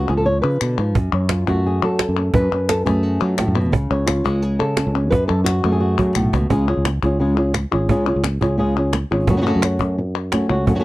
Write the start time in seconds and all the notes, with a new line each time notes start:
0.09 C#2 F3 G#4
0.17 A4
0.26 C#5
0.42 C#3 B4
0.61 B2 D3, clap
0.78 G#2 F3
0.95 F#2, cajon bass
1.13 F#2 C#5, cajon slap
1.29 F4, cajon slap, clap
1.47 F#2 A3 F#4, cajon bass, cajon slap
1.66 G#4
1.83 F#3 A4
1.99 cajon slap, clap
2.09 F#2
2.19 C#4
2.34 F#2 B4, cajon bass
2.52 F#2 C#4
2.69 A4, cajon slap, clap
2.86 F#2 A3 G#4, cajon bass
3.03 F#4
3.20 F#3 F4
3.38 A2 F#4, cajon slap, clap
3.48 F#2
3.55 B2
3.72 C#2 C#3, cajon bass
3.91 C#2 C#5
4.06 F4, cajon slap, clap
4.24 C#2 G#3 F#4, cajon bass, cajon slap
4.42 G#4
4.59 C#3 A4
4.77 C#4, cajon slap, clap
4.87 C#2
4.95 C#4
5.10 F#2 B4, cajon bass
5.28 F#2 A4
5.44 F#4, cajon slap, clap
5.64 F#2 A3
5.72 G#4
5.81 F#4
5.99 F#3, cajon bass
6.15 B1 A2, cajon bass, clap
6.33 C#2 B2, cajon bass
6.50 C#2 C#3 G#3 C#4 F4 G#4, cajon bass
6.68 C#4 F4 G#4
6.77 C#2
6.85 muted nylon-string guitar stroke, cajon slap, clap
7.03 C#2 C#4 F4 G#4, cajon bass, cajon slap
7.20 C#3 G#3 C#4 F4 G#4
7.37 C#4 F4 G#4
7.54 muted nylon-string guitar stroke, cajon slap, clap
7.72 G#1 C#4 F4 G#4
7.89 C#2 C#3 G#3 C#4 F4 G#4, cajon bass
8.07 C#4 F4 G#4
8.16 C#2
8.24 muted nylon-string guitar stroke, cajon slap, clap
8.41 C#2 C#4 F4 G#4, cajon bass
8.58 C#3 G#3 C#4 F4 G#4
8.77 C#4 F4 G#4
8.93 muted nylon-string guitar stroke, cajon slap, clap
9.11 G#1 C#4 F4 G#4, cajon slap
9.27 F#2 C#3 F#3 A3 C#4 F#4, cajon bass
9.37 F#3 A3 C#4 F#4
9.41 F#3 A3 C#4 F#4
9.46 C#3 F#3 A3 C#4 F#4
9.56 F#2
9.62 A3 C#4 F#4, cajon slap, clap
9.79 F#2, cajon bass
9.98 muted nylon-string guitar stroke
10.32 F#3 A3 C#4 F#4, cajon slap, clap
10.49 C#2 A3 C#4 F#4
10.66 F#2 C#3 F#3 A3 C#4 F#4, cajon bass
10.75 F#3 A3 C#4 F#4
10.80 F#3 A3 C#4 F#4